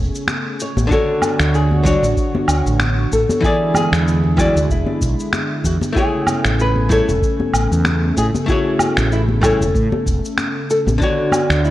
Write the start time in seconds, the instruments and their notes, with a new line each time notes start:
Already playing: analog synth pad C#3 A3 G#4
0.15 shaker
0.27 finger snap, high conga, shaker
0.60 nylon-string guitar C#5, shaker
0.77 fretless electric bass A1, high conga, shaker
0.87 hollow-body jazz guitar D3 D4 F#4, kick
0.91 analog synth pad D3 F#4 C#5, nylon-string guitar A4, hollow-body jazz guitar C#5, shaker
1.22 high conga, low woodblock, shaker
1.40 fretless electric bass D2, finger snap, shaker
1.54 nylon-string guitar G#4, shaker
1.71 high conga
1.84 hollow-body jazz guitar D3 D4 F#4 C#5, nylon-string guitar F#4, kick, low conga, shaker
2.03 fretless electric bass A1, shaker
2.17 kick, shaker
2.35 high conga
2.48 fretless electric bass D2, low woodblock, shaker
2.66 fretless electric bass A1, shaker
2.79 finger snap, high conga, shaker
3.12 fretless electric bass A1, nylon-string guitar A4, kick, shaker
3.29 high conga, shaker
3.41 analog synth pad D3 G#3 E4, hollow-body jazz guitar E3 E4 G#4, kick, shaker
3.45 nylon-string guitar G#4, hollow-body jazz guitar D5
3.74 nylon-string guitar G#4, high conga, low woodblock, shaker
3.92 fretless electric bass E2, finger snap, shaker
4.08 shaker
4.24 high conga
4.37 hollow-body jazz guitar E3 E4 G#4 D5, nylon-string guitar F#4, kick, low conga, low woodblock, shaker
4.55 fretless electric bass D2, shaker
4.69 fretless electric bass E1, nylon-string guitar E4, kick, shaker
4.86 high conga
5.01 fretless electric bass B1, kick, shaker
5.20 shaker
5.33 finger snap, high conga, shaker
5.64 fretless electric bass E2, nylon-string guitar F#4, kick, shaker
5.81 high conga, shaker
5.93 analog synth pad C#3 A3 G#5, hollow-body jazz guitar A3 E4 G#4, kick
5.97 nylon-string guitar G#4, hollow-body jazz guitar C#5, shaker
6.27 high conga, low woodblock, shaker
6.44 fretless electric bass A1, finger snap, shaker
6.59 nylon-string guitar B4, shaker
6.75 high conga
6.89 hollow-body jazz guitar A3 E4 G#4 C#5, nylon-string guitar A4, kick, low conga, shaker
7.08 fretless electric bass E1, shaker
7.22 kick, shaker
7.40 high conga
7.53 fretless electric bass A1, low woodblock, shaker
7.72 fretless electric bass E2, shaker
7.85 finger snap, high conga, shaker
8.17 fretless electric bass A2, nylon-string guitar G#4, kick, shaker
8.35 high conga, shaker
8.46 hollow-body jazz guitar A3 E4 G#4, nylon-string guitar F#4, kick, shaker
8.52 hollow-body jazz guitar C#5
8.79 high conga, low woodblock, shaker
8.97 fretless electric bass A1, finger snap, shaker
9.12 nylon-string guitar E4, shaker
9.29 high conga
9.41 hollow-body jazz guitar A3 E4 G#4 C#5, nylon-string guitar A4, kick, low conga, low woodblock, shaker
9.60 fretless electric bass E1, shaker
9.74 fretless electric bass A2, kick, shaker
9.92 high conga
10.06 fretless electric bass E1, kick, shaker
10.25 shaker
10.37 finger snap, high conga, shaker
10.70 nylon-string guitar A4, shaker
10.87 fretless electric bass A1, high conga, shaker
10.98 hollow-body jazz guitar D3 D4 F#4, analog synth pad D3 F#4 C#5, kick, shaker
11.03 nylon-string guitar F#4, hollow-body jazz guitar C#5
11.32 high conga, low woodblock, shaker
11.50 fretless electric bass D2, finger snap, shaker
11.65 nylon-string guitar E4, shaker